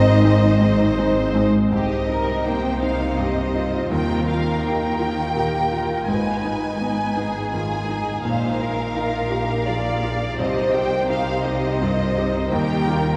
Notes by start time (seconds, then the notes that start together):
Already playing: G#1 G#2 D#3 G#3 C4 D#4 C5 D#5
0.24 G#3 C4 D#4
0.60 G#3 C4 D#4
0.98 G#3 C4 D#4
1.35 G#3 C4 D#4
1.71 C2 C3 D#4 G4 D#5
2.09 D#4 A#4
2.45 A#3 C4 C5 G5
2.81 A#3 D#4 F5
3.17 G2 D#4 G4 C5 D#5
3.55 C4 D#4 F4
3.91 D#2 D#3 A#4 G5
4.27 F4 G4 F5
4.63 A#3 D#4 F4 G5
4.99 A#3 F4
5.35 A#2 G4 A#4
5.72 F4
6.08 G#1 G#2 D#4 B4 G#5
6.44 D#4 G#4
6.80 B3 D#4 B4
7.16 B3 D#4 G#4
7.52 D#3 F4 G#4 G#5
7.88 D#4
8.23 A#1 A#2 D#4 C5 F5
8.60 F4 A#4
8.95 D#4 F4
9.31 A#3 F4 G4
9.66 F3 F4 G#4 D5
10.02 D#4 F4
10.38 C2 C3 G4 C5 D#5
10.74 G4 A#4 G5
11.09 D#4 G4 C5 F5
11.44 G3 G4 D#5
11.81 G2 F4 A#4
12.18 D#4 G4
12.51 D#2 D#3 G4 A#4 G5
12.88 F4 G4 A#4